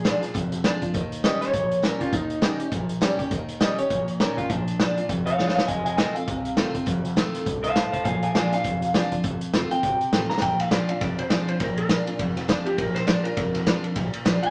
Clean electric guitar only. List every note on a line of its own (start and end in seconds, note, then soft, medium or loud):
0.00 0.33 G#4 loud
1.24 1.41 D#5 medium
1.41 1.82 C#5 loud
1.84 2.00 A#4 medium
2.01 2.13 F4 medium
2.13 2.70 D#4 loud
3.61 3.78 D#5 medium
3.79 4.19 C#5 loud
4.20 4.37 A#4 medium
4.37 4.50 F4 loud
4.50 5.07 D4 loud
5.26 5.37 C#5 medium
5.26 5.37 F5 medium
5.38 5.54 C#5 medium
5.38 5.55 F5 medium
5.55 5.67 C#5 medium
5.55 5.67 F5 medium
5.67 5.84 D#5 medium
5.67 5.85 G#5 medium
5.85 5.96 D#5 medium
5.85 5.96 G#5 medium
5.97 6.14 D#5 medium
5.97 6.15 G#5 medium
6.15 7.01 F5 loud
7.63 7.74 C5 medium
7.63 7.74 F5 loud
7.75 7.91 C5 medium
7.75 7.92 F5 medium
7.92 8.04 C5 loud
7.92 8.04 F5 medium
8.04 8.22 F5 medium
8.04 8.22 G#5 medium
8.23 8.34 F5 medium
8.23 8.34 G#5 medium
8.35 8.51 F5 medium
8.35 8.52 G#5 medium
8.53 9.39 F5 loud
9.71 10.29 G5 loud
10.30 10.41 A#5 loud
10.42 10.60 G5 loud
10.60 10.72 F5 medium
10.72 10.89 D5 medium
10.89 11.01 F5 medium
11.02 11.18 D5 medium
11.19 11.31 C5 medium
11.31 11.48 D5 medium
11.49 11.60 C5 medium
11.60 11.77 A#4 medium
11.78 12.06 A#4 medium
12.66 12.78 G4 loud
12.78 12.95 A#4 medium
12.95 13.07 C5 medium
13.07 13.24 D5 medium
13.24 13.82 A#4 loud
14.43 14.50 G#5 loud